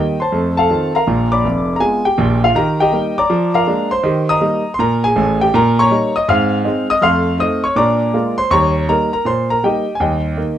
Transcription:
grand piano
Already playing: D#3 G3 A#3 G4 D#5 G5
0.20 C5 A5 C6
0.32 F2 A3
0.57 A4 F5 A5
0.70 D#3 C4 F4
0.95 A#4 F5 A#5
1.07 A#1 A#2
1.32 D5 B5 D6
1.44 F1 F2
1.76 G#3 B3 F4 A#5
1.80 G#4 G#5
2.05 G4 G5
2.18 A#1 A#2
2.44 F4 F5
2.55 D#3 G4 A#4 A#5
2.80 G4 D#5 G5
2.92 G3 A#3 D#4
3.18 D5 A#5 D6
3.30 F3
3.54 A#4 F5 A#5
3.67 G#3 A#3 D4
3.91 C5 C6
4.03 D#3 G4
4.29 D#5 A#5 D#6
4.41 G3 A#3 D#4
4.74 C6
4.79 A#2 A#4 A#5
5.04 G#4 G#5
5.16 A1 A2
5.41 G4 G5
5.54 A#2 A#4 A#5
5.79 C#5 A#5 C#6
5.91 G3 A#3 D#4
6.16 D#5 D#6
6.28 G#2 C4 F5 F6
6.65 G#3 C4 D#4
6.90 D#5 D#6
7.01 F2 A3 F5 C6 F6
7.39 A3 C4 D#4 D#5 D#6
7.64 C#5 C#6
7.76 A#2 D4 D5 A#5 D6
8.14 G#3 A#3 F4
8.38 C5 C6
8.51 D#2 G3 C#5 A#5 C#6
8.88 G3 A#3 D#4 A#4 A#5
9.13 A#4 A#5
9.25 A#2 C5 C6
9.50 A#4 A#5
9.63 G3 A#3 D#4 G4 D#5 G5
9.95 G#5
10.00 D#2 G3 G4 D#5 G5
10.37 D#3 A#3 D#4

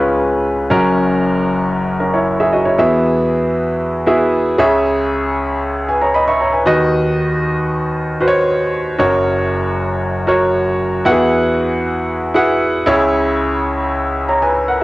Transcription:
grand piano
Already playing: C#2 C#3 G#3 C#4 F4 B4
0.70 F#1 F#2 C#4 F#4 A#4
2.00 C#4 A#4
2.14 E4 C#5
2.40 G#4 E5
2.53 F#4 D#5
2.65 E4 C#5
2.78 E2 E3 B3 E4 F#4 G#4 E5
4.07 B3 E4 F#4 G#4 E5
4.58 C#2 C#3 G#4 C#5 E5
5.89 B4 G#5
6.02 C#5 A#5
6.14 D#5 B5
6.28 E5 C#6
6.41 C#5 A#5
6.53 B4 G#5
6.66 D#2 D#3 F#4 B4 D#5
8.21 F#4 B4 C5
8.28 C#5
8.99 F#1 F#2 F#4 A#4 C#5
10.27 F#4 A#4 C#5
11.05 E2 E3 E4 F#4 G4 B4 F#5
11.12 G#4
12.34 E4 F#4 G#4 B4 F#5
12.86 C#2 C#3 E4 G#4 C#5
14.29 C#5 A#5
14.42 B4 G#5
14.68 A#4 F#5

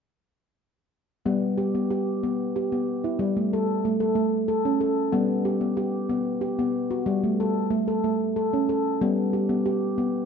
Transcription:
handpan
1.26 G3 B3
1.58 G4
1.75 B3
1.91 G4
2.23 B3
2.56 G4
2.72 B3
3.04 E4
3.19 G3
3.37 A3
3.53 A4
3.85 A3
4.00 A4
4.15 A3
4.48 A4
4.65 C#4
4.81 A4
5.12 G3 B3
5.45 G4
5.61 B3
5.77 G4
6.09 B3
6.41 G4
6.59 B3
6.91 F#4
7.06 G3
7.24 A3
7.40 A4
7.70 A3
7.88 A4
8.04 A3
8.36 A4
8.53 C#4
8.69 A4
9.01 G3 B3
9.33 G4
9.49 B3
9.66 G4
9.98 B3

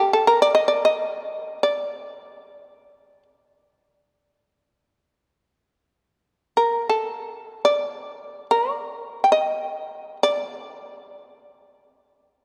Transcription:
shamisen
0.00 G4
0.13 A4
0.27 A#4
0.42 D5
0.55 D#5
0.68 D5
0.85 D#5
1.63 D5
6.57 A#4
6.89 A4
7.65 D5
8.51 A#4
8.73 D5
9.24 G5
9.32 D#5
10.23 D5
11.62 C#5
11.80 C5
11.98 B4
12.16 A#4

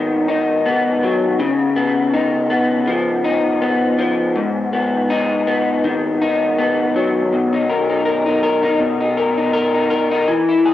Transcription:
clean electric guitar
Already playing: G#2 D#3 B3 D#4
0.28 D#4
0.66 B3
1.03 F#3
1.39 C#3
1.76 B3
2.13 D#4
2.50 B3
2.88 F3
3.24 D#4
3.62 B3
3.99 F3
4.36 G#2
4.73 B3
5.10 D#4
5.47 B3
5.84 D#3
6.22 D#4
6.59 B3
6.96 F#3
7.33 B2
7.53 D#4
7.69 A#4
7.90 D#4
8.05 A#4
8.26 D#4
8.43 A#4
8.63 D#4
8.80 B2
9.00 D#4
9.17 A#4
9.37 D#4
9.53 A#4
9.74 D#4
9.90 A#4
10.11 D#4
10.28 E3
10.49 E4
10.65 G#4

